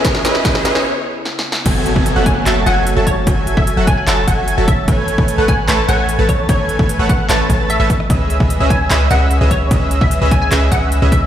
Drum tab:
CC |------------------------------------------------|x-----------------------------------------------|------------------------------------------------|------------------------------------------------|
HH |x-----x-----x-----x-----------------------------|x-----x-----x-----x-----x-----x-----x-----x-----|x-----x-----x-----x-----x-----x-----x-----x-----|x-----x-----x-----x-----x-----x-----x-----x-----|
CP |------------------------------------------------|------------------------x-----------------------|------------------------x-----------------------|------------------------x-----------------------|
SD |o--o--o--o--o--o--o--o--------------o---o---o---|------------------------------------------------|------------------------------------------------|------------------------------------------------|
BD |o-----------o-----------------------------------|o--------o--------o-----------------------o-----|o--------o--------o-----------o-----------o-----|o--------o--------o-----------------------o-----|

CC |------------------------------------------------|------------------------------------------------|------------------------------------------------|
HH |x-----x-----x-----x-----x-----x-----x-----x-----|x-----x-----x-----x-----x-----x-----x-----x-----|x-----x-----x-----x-----x-----x-----x-----x-----|
CP |------------------------x-----------------------|------------------------x-----------------------|------------------------x-----------------------|
SD |---------------------------------------------r--|------------------------------------------------|------------------------------------------------|
BD |o--------o--------o-----------o-----------o-----|o--------o--------o-----------------------o-----|o--------o--------o-----------o-----------o-----|